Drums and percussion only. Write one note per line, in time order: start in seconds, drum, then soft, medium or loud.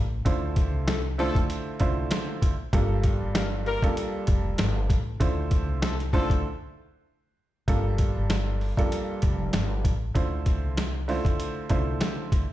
0.26 kick loud
0.26 closed hi-hat medium
0.56 kick loud
0.56 closed hi-hat medium
0.88 snare loud
0.88 snare medium
0.88 closed hi-hat loud
1.19 open hi-hat medium
1.35 kick medium
1.35 closed hi-hat medium
1.50 closed hi-hat medium
1.80 kick loud
1.80 closed hi-hat medium
2.11 snare loud
2.11 snare medium
2.11 closed hi-hat loud
2.42 kick loud
2.42 closed hi-hat medium
2.73 kick loud
2.73 closed hi-hat medium
3.04 kick loud
3.04 closed hi-hat medium
3.35 snare loud
3.35 closed hi-hat loud
3.66 open hi-hat medium
3.83 kick medium
3.83 closed hi-hat medium
3.97 closed hi-hat loud
4.27 kick loud
4.27 closed hi-hat medium
4.58 snare loud
4.58 snare medium
4.58 closed hi-hat loud
4.90 kick loud
4.90 closed hi-hat medium
5.20 kick loud
5.20 closed hi-hat loud
5.51 kick loud
5.51 closed hi-hat medium
5.82 snare loud
5.82 closed hi-hat loud
6.00 closed hi-hat soft
6.13 kick medium
6.13 open hi-hat soft
6.30 kick medium
6.30 closed hi-hat medium
7.68 kick loud
7.68 closed hi-hat medium
7.98 kick loud
7.98 closed hi-hat medium
8.30 snare loud
8.30 snare medium
8.30 closed hi-hat medium
8.61 open hi-hat soft
8.77 kick medium
8.77 closed hi-hat soft
8.92 closed hi-hat medium
9.22 kick loud
9.22 closed hi-hat medium
9.53 snare loud
9.53 snare medium
9.53 closed hi-hat medium
9.85 kick loud
9.85 closed hi-hat medium
10.15 kick loud
10.15 closed hi-hat medium
10.46 kick medium
10.46 closed hi-hat medium
10.77 snare loud
10.77 snare medium
10.77 closed hi-hat medium
11.09 open hi-hat soft
11.25 kick medium
11.25 closed hi-hat medium
11.40 closed hi-hat medium
11.70 kick loud
11.70 closed hi-hat medium
12.01 snare loud
12.01 snare medium
12.01 closed hi-hat medium
12.32 kick medium
12.32 closed hi-hat medium